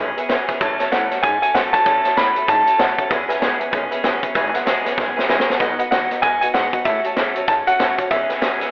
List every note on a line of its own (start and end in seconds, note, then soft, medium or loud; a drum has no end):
0.00 0.16 B1 medium
0.00 0.17 G#3 medium
0.00 0.18 B3 medium
0.00 0.17 C#4 medium
0.00 0.16 G#4 medium
0.00 0.10 B4 medium
0.00 0.10 E5 medium
0.00 0.10 G#5 medium
0.17 0.29 B3 soft
0.17 0.29 C#4 medium
0.17 0.30 G#4 medium
0.17 0.25 B4 medium
0.17 0.25 E5 medium
0.17 0.25 G#5 loud
0.17 muted upright bass stroke medium
0.17 closed hi-hat medium
0.29 0.47 C#2 medium
0.29 0.48 E3 medium
0.29 0.49 G#3 medium
0.29 0.49 B3 medium
0.29 0.48 C#4 loud
0.29 0.47 G#4 medium
0.29 0.41 B4 loud
0.29 0.41 E5 loud
0.29 0.41 G#5 loud
0.29 snare loud
0.29 closed hi-hat medium
0.48 0.62 B3 soft
0.48 0.61 C#4 medium
0.48 0.61 G#4 medium
0.48 0.57 B4 medium
0.48 0.57 E5 medium
0.48 0.57 G#5 medium
0.48 muted upright bass stroke soft
0.48 kick medium
0.48 snare soft
0.48 closed hi-hat medium
0.60 0.80 A1 medium
0.60 0.80 A2 medium
0.60 0.80 E3 medium
0.60 0.80 F#3 medium
0.60 0.80 A3 medium
0.60 0.79 C#4 loud
0.60 0.78 A4 loud
0.60 0.72 C#5 loud
0.60 0.73 E5 loud
0.60 0.73 A5 loud
0.60 kick loud
0.60 closed hi-hat medium
0.79 0.92 F#3 soft
0.79 0.92 A3 soft
0.79 0.93 C#4 medium
0.79 0.92 A4 medium
0.79 0.87 C#5 loud
0.79 0.87 E5 medium
0.79 0.87 A5 loud
0.79 muted upright bass stroke medium
0.79 snare soft
0.79 closed hi-hat medium
0.91 1.11 A2 medium
0.91 1.12 E3 medium
0.91 1.12 F#3 medium
0.91 1.11 A3 medium
0.91 1.10 C#4 medium
0.91 1.09 A4 medium
0.91 1.03 C#5 medium
0.91 1.24 F#5 medium
0.91 1.04 A5 medium
0.91 snare loud
0.91 closed hi-hat medium
1.11 1.22 F#3 soft
1.11 1.23 A3 soft
1.11 1.24 C#4 soft
1.11 1.23 A4 medium
1.11 1.19 C#5 medium
1.11 1.19 E5 medium
1.11 1.19 A5 medium
1.11 muted upright bass stroke medium
1.11 snare soft
1.11 closed hi-hat medium
1.23 1.42 G#2 medium
1.23 1.42 F#3 medium
1.23 1.43 A3 medium
1.23 1.42 C#4 medium
1.23 1.41 A4 medium
1.23 1.35 C#5 medium
1.23 1.35 E5 medium
1.23 1.41 G#5 medium
1.23 1.35 A5 medium
1.23 kick loud
1.23 closed hi-hat medium
1.42 1.54 F#3 soft
1.42 1.54 A3 soft
1.42 1.55 C#4 medium
1.42 1.55 A4 medium
1.42 1.50 C#5 medium
1.42 1.50 E5 medium
1.42 1.54 G#5 medium
1.42 1.50 A5 medium
1.42 muted upright bass stroke medium
1.42 closed hi-hat medium
1.54 1.73 F#2 medium
1.54 1.74 A2 medium
1.54 1.74 E3 medium
1.54 1.74 F#3 medium
1.54 1.74 A3 medium
1.54 1.73 C#4 medium
1.54 1.72 A4 medium
1.54 1.66 C#5 loud
1.54 1.66 E5 medium
1.54 1.60 F#5 medium
1.54 1.66 A5 loud
1.54 snare loud
1.54 closed hi-hat medium
1.73 1.85 F#3 soft
1.73 1.86 A3 soft
1.73 1.86 C#4 medium
1.73 1.86 A4 medium
1.73 1.81 C#5 medium
1.73 1.81 E5 medium
1.73 1.81 A5 medium
1.73 2.14 A5 loud
1.73 muted upright bass stroke medium
1.73 kick medium
1.73 snare soft
1.73 closed hi-hat medium
1.85 2.05 E2 medium
1.85 2.05 A2 medium
1.85 2.05 E3 medium
1.85 2.05 F#3 medium
1.85 2.05 A3 medium
1.85 2.04 C#4 medium
1.85 2.03 A4 medium
1.85 1.97 C#5 medium
1.85 1.97 E5 medium
1.85 1.97 A5 loud
1.85 kick loud
1.85 closed hi-hat medium
2.04 2.16 F#3 soft
2.04 2.17 A3 soft
2.04 2.17 C#4 soft
2.04 2.17 A4 medium
2.04 2.12 C#5 medium
2.04 2.12 E5 medium
2.04 2.13 A5 loud
2.04 muted upright bass stroke medium
2.04 snare soft
2.04 closed hi-hat medium
2.17 2.36 A2 medium
2.17 2.36 E3 medium
2.17 2.37 F#3 medium
2.17 2.36 A3 medium
2.17 2.35 C#4 medium
2.17 2.34 A4 medium
2.17 2.29 C#5 medium
2.17 2.29 E5 medium
2.17 2.29 A5 medium
2.17 2.50 B5 loud
2.17 snare loud
2.17 closed hi-hat medium
2.35 2.46 F#3 soft
2.35 2.47 A3 soft
2.35 2.48 C#4 soft
2.35 2.48 A4 medium
2.35 2.43 C#5 medium
2.35 2.44 E5 medium
2.35 2.44 A5 medium
2.35 muted upright bass stroke medium
2.35 closed hi-hat medium
2.47 2.67 G#2 medium
2.47 2.67 F#3 medium
2.47 2.67 A3 medium
2.47 2.66 C#4 medium
2.47 2.65 A4 medium
2.47 2.59 C#5 medium
2.47 2.59 E5 medium
2.47 2.59 A5 medium
2.47 2.81 A5 loud
2.47 kick loud
2.47 closed hi-hat medium
2.65 2.79 F#3 soft
2.65 2.79 A3 soft
2.65 2.80 C#4 medium
2.65 2.79 A4 medium
2.65 2.74 C#5 medium
2.65 2.74 E5 medium
2.65 2.74 A5 medium
2.65 muted upright bass stroke medium
2.65 closed hi-hat medium
2.78 2.98 F#2 medium
2.78 2.98 A2 medium
2.78 2.99 E3 medium
2.78 2.99 F#3 medium
2.78 2.99 A3 medium
2.78 2.98 C#4 medium
2.78 2.97 A4 loud
2.78 2.90 C#5 loud
2.78 2.91 E5 medium
2.78 3.26 F#5 medium
2.78 2.91 A5 loud
2.78 snare loud
2.78 closed hi-hat medium
2.98 3.10 F#3 soft
2.98 3.11 A3 soft
2.98 3.10 C#4 medium
2.98 3.11 A4 medium
2.98 3.06 C#5 medium
2.98 3.06 E5 medium
2.98 3.06 A5 medium
2.98 muted upright bass stroke medium
2.98 kick medium
2.98 closed hi-hat medium
3.09 3.29 E2 medium
3.09 3.30 E3 medium
3.09 3.30 G#3 medium
3.09 3.30 B3 medium
3.09 3.30 C#4 medium
3.09 3.28 G#4 medium
3.09 3.22 B4 medium
3.09 3.22 E5 medium
3.09 3.22 G#5 loud
3.09 kick loud
3.09 snare soft
3.09 closed hi-hat medium
3.28 3.41 B3 soft
3.28 3.42 C#4 medium
3.28 3.42 G#4 medium
3.28 3.37 B4 loud
3.28 3.37 E5 loud
3.28 3.37 G#5 loud
3.28 muted upright bass stroke medium
3.28 snare soft
3.28 closed hi-hat medium
3.40 3.61 C#2 medium
3.40 3.61 E3 medium
3.40 3.61 G#3 medium
3.40 3.61 B3 medium
3.40 3.61 C#4 medium
3.40 3.59 G#4 loud
3.40 3.52 B4 medium
3.40 3.53 E5 medium
3.40 3.53 G#5 loud
3.40 snare loud
3.40 closed hi-hat medium
3.59 3.73 C#4 medium
3.59 3.73 G#4 medium
3.59 3.67 B4 medium
3.59 3.68 E5 medium
3.59 3.68 G#5 medium
3.59 muted upright bass stroke medium
3.59 closed hi-hat medium
3.63 3.72 B3 soft
3.71 3.91 B1 medium
3.71 3.91 G#3 medium
3.71 3.92 B3 medium
3.71 3.91 C#4 medium
3.71 3.90 G#4 medium
3.71 3.84 B4 medium
3.71 3.84 E5 medium
3.71 3.84 G#5 loud
3.71 kick loud
3.71 closed hi-hat medium
3.91 4.03 B3 soft
3.91 4.04 C#4 medium
3.91 4.04 G#4 medium
3.91 3.99 B4 medium
3.91 3.99 E5 medium
3.91 3.99 G#5 loud
3.91 muted upright bass stroke medium
3.91 closed hi-hat medium
4.03 4.22 A1 medium
4.03 4.23 E3 medium
4.03 4.23 G#3 medium
4.03 4.24 B3 loud
4.03 4.23 C#4 loud
4.03 4.21 G#4 loud
4.03 4.16 B4 loud
4.03 4.16 E5 loud
4.03 4.16 G#5 loud
4.03 snare loud
4.03 closed hi-hat medium
4.22 4.34 B3 soft
4.22 4.35 C#4 medium
4.22 4.35 G#4 medium
4.22 4.31 B4 medium
4.22 4.31 E5 medium
4.22 4.31 G#5 medium
4.22 muted upright bass stroke medium
4.22 kick medium
4.22 closed hi-hat medium
4.35 4.54 G#1 medium
4.35 4.54 E3 loud
4.35 4.55 G#3 medium
4.35 4.55 B3 medium
4.35 4.54 C#4 medium
4.35 4.52 G#4 loud
4.35 4.47 B4 loud
4.35 4.47 E5 loud
4.35 4.47 G#5 loud
4.35 kick loud
4.35 closed hi-hat medium
4.54 4.66 B3 soft
4.54 4.67 C#4 medium
4.54 4.67 G#4 medium
4.54 4.62 B4 loud
4.54 4.62 E5 loud
4.54 4.62 F#5 loud
4.54 muted upright bass stroke medium
4.54 snare soft
4.54 closed hi-hat medium
4.65 4.85 A1 medium
4.65 4.86 E3 medium
4.65 4.86 G#3 loud
4.65 4.86 B3 medium
4.65 4.86 C#4 medium
4.65 4.84 G#4 medium
4.65 4.77 B4 medium
4.65 4.78 E5 medium
4.65 4.78 G#5 loud
4.65 snare loud
4.65 closed hi-hat medium
4.85 4.97 B3 medium
4.85 4.98 C#4 medium
4.85 4.98 G#4 medium
4.85 4.93 B4 medium
4.85 4.93 E5 medium
4.85 4.93 G#5 medium
4.85 muted upright bass stroke soft
4.85 snare soft
4.85 closed hi-hat medium
4.97 5.17 B1 medium
4.97 5.17 G#3 medium
4.97 5.17 B3 medium
4.97 5.16 C#4 medium
4.97 5.15 G#4 medium
4.97 5.09 B4 medium
4.97 5.10 E5 medium
4.97 5.09 G#5 loud
4.97 kick loud
4.97 snare medium
5.16 5.28 B3 medium
5.16 5.29 C#4 medium
5.16 5.29 G#4 medium
5.16 5.24 B4 medium
5.16 5.24 E5 medium
5.16 5.24 G#5 loud
5.16 muted upright bass stroke medium
5.16 snare medium
5.28 5.48 C#2 medium
5.28 5.48 E3 medium
5.28 5.48 G#3 loud
5.28 5.49 B3 medium
5.28 5.49 C#4 loud
5.28 5.47 G#4 medium
5.28 5.41 B4 loud
5.28 5.41 E5 loud
5.28 5.41 G#5 loud
5.28 snare medium
5.40 snare loud
5.47 5.62 C#4 soft
5.47 5.61 G#4 medium
5.47 5.55 B4 medium
5.47 5.55 E5 medium
5.47 5.56 G#5 loud
5.47 muted upright bass stroke medium
5.47 snare medium
5.51 5.60 B3 medium
5.60 5.79 B1 medium
5.60 5.79 B2 medium
5.60 5.80 G#3 medium
5.60 5.80 B3 medium
5.60 5.79 D#4 medium
5.60 5.78 F#4 medium
5.60 5.72 B4 loud
5.60 5.72 D#5 loud
5.60 5.72 F#5 loud
5.60 kick loud
5.60 snare soft
5.60 closed hi-hat medium
5.79 5.91 B3 medium
5.79 5.92 D#4 medium
5.79 5.92 F#4 medium
5.79 5.87 B4 loud
5.79 5.87 D#5 loud
5.79 5.87 F#5 loud
5.79 muted upright bass stroke medium
5.79 closed hi-hat medium
5.91 6.10 D#2 medium
5.91 6.11 B2 medium
5.91 6.11 G#3 medium
5.91 6.11 B3 medium
5.91 6.11 D#4 medium
5.91 6.09 F#4 medium
5.91 6.03 B4 medium
5.91 6.03 D#5 medium
5.91 6.24 F#5 medium
5.91 6.03 F#5 medium
5.91 snare loud
5.91 closed hi-hat medium
6.10 6.23 B3 soft
6.10 6.24 D#4 soft
6.10 6.23 F#4 medium
6.10 6.18 B4 medium
6.10 6.19 D#5 medium
6.10 6.19 F#5 medium
6.10 muted upright bass stroke medium
6.10 snare soft
6.10 closed hi-hat medium
6.22 6.42 F#2 medium
6.22 6.42 G#3 medium
6.22 6.43 B3 medium
6.22 6.42 D#4 medium
6.22 6.41 F#4 medium
6.22 6.35 B4 medium
6.22 6.35 D#5 medium
6.22 6.35 F#5 medium
6.22 6.40 G#5 medium
6.22 kick loud
6.22 closed hi-hat medium
6.41 6.54 B3 soft
6.41 6.55 D#4 soft
6.41 6.54 F#4 medium
6.41 6.50 B4 medium
6.41 6.50 D#5 medium
6.41 6.50 F#5 medium
6.41 6.46 G#5 medium
6.41 muted upright bass stroke medium
6.41 closed hi-hat medium
6.54 6.72 G#2 medium
6.54 6.74 B2 medium
6.54 6.74 G#3 medium
6.54 6.74 B3 medium
6.54 6.73 D#4 medium
6.54 6.72 F#4 medium
6.54 6.66 B4 medium
6.54 6.66 D#5 medium
6.54 6.86 F#5 medium
6.54 6.66 F#5 loud
6.54 snare loud
6.54 closed hi-hat medium
6.73 6.85 B3 soft
6.73 6.86 D#4 medium
6.73 6.85 F#4 medium
6.73 6.81 B4 medium
6.73 6.81 D#5 medium
6.73 6.81 F#5 medium
6.73 muted upright bass stroke medium
6.73 kick medium
6.73 closed hi-hat medium
6.85 7.04 A2 medium
6.85 7.04 E3 medium
6.85 7.05 F#3 medium
6.85 7.04 A3 medium
6.85 7.03 C#4 medium
6.85 7.02 F#4 medium
6.85 6.97 C#5 loud
6.85 7.44 E5 medium
6.85 6.97 E5 medium
6.85 6.98 A5 loud
6.85 kick loud
6.85 closed hi-hat medium
7.03 7.16 F#3 soft
7.03 7.17 A3 soft
7.03 7.17 C#4 medium
7.03 7.16 F#4 medium
7.03 7.12 C#5 medium
7.03 7.13 E5 medium
7.03 7.13 A5 loud
7.03 muted upright bass stroke medium
7.03 closed hi-hat medium
7.17 7.36 A2 medium
7.17 7.36 C#3 medium
7.17 7.36 E3 medium
7.17 7.36 F#3 medium
7.17 7.37 A3 medium
7.17 7.36 C#4 medium
7.17 7.35 F#4 medium
7.17 7.29 C#5 medium
7.17 7.29 E5 medium
7.17 7.29 A5 medium
7.17 snare loud
7.17 closed hi-hat medium
7.36 7.47 F#3 soft
7.36 7.48 A3 medium
7.36 7.49 C#4 medium
7.36 7.48 F#4 medium
7.36 7.44 C#5 medium
7.36 7.44 E5 medium
7.36 7.44 A5 medium
7.36 muted upright bass stroke medium
7.36 closed hi-hat medium
7.48 7.67 G#2 medium
7.48 7.67 F#3 medium
7.48 7.67 A3 medium
7.48 7.67 C#4 medium
7.48 7.65 F#4 medium
7.48 7.60 C#5 medium
7.48 7.60 E5 medium
7.48 7.53 A5 loud
7.48 7.60 A5 medium
7.48 kick loud
7.48 closed hi-hat medium
7.66 7.79 F#3 soft
7.66 7.79 A3 soft
7.66 7.80 C#4 medium
7.66 7.79 F#4 medium
7.66 7.75 C#5 medium
7.66 7.75 E5 medium
7.66 8.12 F#5 loud
7.66 7.75 A5 medium
7.66 muted upright bass stroke medium
7.66 closed hi-hat medium
7.79 7.98 F#2 medium
7.79 7.98 A2 medium
7.79 7.99 E3 medium
7.79 7.99 F#3 medium
7.79 7.99 A3 medium
7.79 7.98 C#4 medium
7.79 7.97 F#4 medium
7.79 7.91 C#5 medium
7.79 7.91 E5 medium
7.79 7.92 A5 loud
7.79 snare loud
7.79 closed hi-hat medium
7.98 8.11 F#3 soft
7.98 8.11 A3 soft
7.98 8.11 C#4 medium
7.98 8.11 F#4 medium
7.98 8.06 C#5 medium
7.98 8.06 E5 medium
7.98 8.06 A5 medium
7.98 muted upright bass stroke medium
7.98 kick medium
7.98 closed hi-hat medium
8.11 8.29 E2 medium
8.11 8.30 E3 medium
8.11 8.30 G#3 medium
8.11 8.30 B3 medium
8.11 8.30 C#4 medium
8.11 8.28 G#4 medium
8.11 8.22 B4 medium
8.11 8.71 E5 medium
8.11 8.23 E5 medium
8.11 8.22 G#5 loud
8.11 kick loud
8.11 snare soft
8.11 closed hi-hat medium
8.29 8.41 B3 soft
8.29 8.42 C#4 soft
8.29 8.42 G#4 medium
8.29 8.37 B4 loud
8.29 8.37 E5 medium
8.29 8.38 G#5 loud
8.29 muted upright bass stroke medium
8.29 snare soft
8.29 closed hi-hat medium
8.41 8.60 C#2 medium
8.41 8.61 E3 medium
8.41 8.61 G#3 medium
8.41 8.61 B3 medium
8.41 8.60 C#4 medium
8.41 8.59 G#4 medium
8.41 8.54 B4 medium
8.41 8.54 E5 medium
8.41 8.54 G#5 medium
8.41 snare loud
8.41 closed hi-hat medium
8.60 8.71 B3 soft
8.60 8.71 C#4 soft
8.60 8.71 G#4 medium
8.60 8.69 B4 medium
8.60 8.69 E5 medium
8.60 8.69 G#5 medium
8.60 muted upright bass stroke soft
8.60 snare soft
8.60 closed hi-hat medium